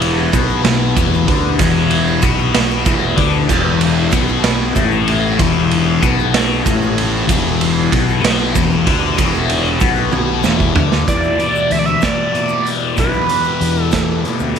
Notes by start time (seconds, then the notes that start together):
Already playing: E1 E2 E3 B3 G4 B4
0.02 ride
0.32 B1 B2 B3, kick, ride, shaker
0.49 shaker
0.63 B1 B2 B3, snare, ride, shaker
0.95 E1 E2 E3, kick, ride, shaker
1.14 shaker
1.27 D2 D3 D4, kick, ride
1.58 E1 E2 E3, kick, ride, shaker
1.91 ride
2.07 shaker
2.20 B1 B2 B3, kick, ride, shaker
2.39 shaker
2.53 B1 B2 B3, snare, ride
2.70 shaker
2.84 E1 E2 E3, kick, ride, shaker
3.16 D2 D3 D4, kick, ride
3.48 E1 E2 E3 A4, kick, crash, shaker
3.81 ride, shaker
4.11 B1 B2 B3, kick, ride, shaker
4.28 shaker
4.44 snare, ride, shaker
4.74 A1 A2 A3, kick, ride, shaker
4.92 shaker
5.08 ride
5.37 E1 E2 E3, kick, ride, shaker
5.71 ride, shaker
6.01 B1 B2 B3, kick, ride, shaker
6.19 shaker
6.34 snare, ride, shaker
6.64 A1 A2 A3, kick, ride, shaker
6.82 shaker
6.98 ride
7.27 E1 E2 E3, kick, ride, shaker
7.61 ride
7.90 B1 B2 B3, kick, ride
8.09 shaker
8.21 B1 B2 B3, snare, ride, shaker
8.53 E1 E2 E3, kick, ride, shaker
8.72 shaker
8.85 D2 D3 D4, kick, ride
9.17 E1 E2 E3, kick, ride, shaker
9.34 shaker
9.50 ride, shaker
9.66 shaker
9.80 B1 B2 B3, kick, ride, shaker
9.96 shaker
10.12 B1 B2 B3, high tom, shaker
10.43 E1 E2 E3, snare, shaker
10.60 kick, shaker
10.75 D2 D3 D4, floor tom, shaker
10.92 snare
11.07 E2 B2 E3 B3 G4 D5, kick, closed hi-hat, shaker
11.23 shaker
11.39 B2 E3, closed hi-hat, shaker
11.55 shaker
11.70 D2 E2 B2 E3 E5, closed hi-hat
11.79 D5
11.86 E5, shaker
12.01 E2 B2 E3 D5, kick, snare, closed hi-hat, shaker
12.33 E2 B2 E3, closed hi-hat
12.48 shaker
12.65 closed hi-hat, shaker
12.96 B1 E2 B2 E3 B4, kick, closed hi-hat, shaker
13.13 shaker
13.29 B2 E3, closed hi-hat, shaker
13.44 shaker
13.60 E2 B2 E3, closed hi-hat
13.76 shaker
13.82 A4
13.91 E2 B2 E3, kick, snare, closed hi-hat, shaker
14.24 E2 B2 E3, closed hi-hat
14.39 D2, shaker
14.55 shaker